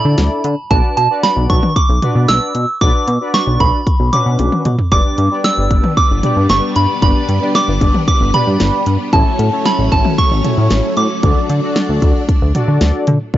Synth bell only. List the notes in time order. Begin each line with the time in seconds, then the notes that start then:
Already playing: B5
0.71 A5
0.97 A5
1.23 B5
1.50 C#6
1.76 D6
2.28 E6
2.81 D6
3.34 C#6
3.60 B5
4.13 D6
4.92 D6
5.44 E6
5.97 D6
6.50 C#6
6.76 B5
7.03 B5
7.55 D6
8.08 D6
8.34 B5
9.13 A5
9.66 B5
9.92 A5
10.18 C#6
10.97 D6